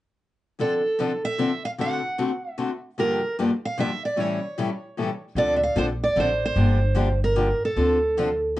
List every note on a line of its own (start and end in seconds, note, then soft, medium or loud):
0.59 0.80 D3 medium
0.59 0.81 F3 medium
0.59 0.81 C4 medium
0.59 0.81 D4 medium
0.59 0.81 A4 medium
0.59 1.24 A4 medium
0.99 1.10 D3 medium
0.99 1.10 F3 medium
0.99 1.11 C4 medium
0.99 1.11 D4 medium
0.99 1.11 A4 medium
1.25 1.65 E5 medium
1.38 1.50 D3 medium
1.38 1.50 F3 medium
1.38 1.50 C4 medium
1.38 1.50 D4 medium
1.38 1.50 A4 medium
1.65 1.70 F5 medium
1.78 2.00 D3 medium
1.78 2.00 A3 medium
1.78 2.00 C4 medium
1.78 2.00 F#4 medium
1.78 2.01 A4 medium
1.78 2.51 F#5 medium
2.18 2.30 D3 medium
2.18 2.30 A3 medium
2.18 2.30 C4 medium
2.18 2.30 F#4 medium
2.18 2.30 A4 medium
2.51 2.80 E5 medium
2.58 2.69 D3 medium
2.58 2.69 A3 medium
2.58 2.70 C4 medium
2.58 2.70 F#4 medium
2.58 2.70 A4 medium
2.98 3.19 G2 medium
2.98 3.19 D3 medium
2.98 3.20 F3 medium
2.98 3.20 A#3 medium
2.98 3.20 D4 medium
2.98 3.20 G4 medium
2.98 3.36 A#4 medium
3.39 3.50 G2 medium
3.39 3.50 D3 medium
3.39 3.50 F3 medium
3.39 3.50 A#3 medium
3.39 3.50 D4 medium
3.39 3.50 G4 medium
3.65 3.78 F5 medium
3.77 3.89 G2 medium
3.77 3.89 D3 medium
3.77 3.89 F3 medium
3.77 3.89 A#3 medium
3.77 3.89 D4 medium
3.77 3.90 G4 medium
3.77 4.02 E5 medium
4.05 4.20 D5 medium
4.16 4.38 A2 medium
4.16 4.38 E3 medium
4.16 4.39 G3 medium
4.16 4.39 C#4 medium
4.16 4.39 E4 medium
4.16 4.39 A4 medium
4.16 5.23 C#5 medium
4.58 4.69 A2 medium
4.58 4.69 E3 medium
4.58 4.69 G3 medium
4.58 4.69 C#4 medium
4.58 4.69 E4 medium
4.58 4.69 A4 medium
4.97 5.08 A2 medium
4.97 5.09 E3 medium
4.97 5.09 G3 medium
4.97 5.09 C#4 medium
4.97 5.09 E4 medium
4.97 5.09 A4 medium
5.35 5.68 D2 medium
5.35 5.58 D3 medium
5.35 5.58 F3 medium
5.35 5.58 C4 medium
5.35 5.58 D4 medium
5.35 5.58 A4 medium
5.35 5.56 D5 medium
5.56 5.62 E5 medium
5.63 5.78 F5 medium
5.76 6.10 A#1 medium
5.76 5.87 D3 medium
5.76 5.87 F3 medium
5.76 5.88 C4 medium
5.76 5.88 D4 medium
5.76 5.88 A4 medium
5.76 5.85 C5 medium
6.03 6.18 D5 medium
6.16 6.50 A1 medium
6.16 6.27 D3 medium
6.16 6.28 F3 medium
6.16 6.28 C4 medium
6.16 6.28 D4 medium
6.16 6.28 A4 medium
6.20 6.43 C5 medium
6.45 7.19 C5 medium
6.56 7.51 G1 medium
6.56 6.77 D3 medium
6.56 6.77 F3 medium
6.56 6.77 A#3 medium
6.56 6.78 D4 medium
6.56 6.78 G4 medium
6.95 7.07 D3 medium
6.95 7.07 F3 medium
6.95 7.07 A#3 medium
6.95 7.07 D4 medium
6.95 7.07 G4 medium
7.24 7.63 A#4 medium
7.36 7.47 D3 medium
7.36 7.47 F3 medium
7.36 7.47 A#3 medium
7.36 7.47 D4 medium
7.36 7.47 G4 medium
7.65 8.38 A4 medium
7.76 8.60 D2 medium
7.76 7.97 D3 medium
7.76 7.97 F3 medium
7.76 7.97 C4 medium
7.76 7.98 D4 medium
7.76 7.98 A4 medium
8.17 8.27 D3 medium
8.17 8.28 F3 medium
8.17 8.28 C4 medium
8.17 8.28 D4 medium
8.17 8.28 A4 medium
8.56 8.60 F3 medium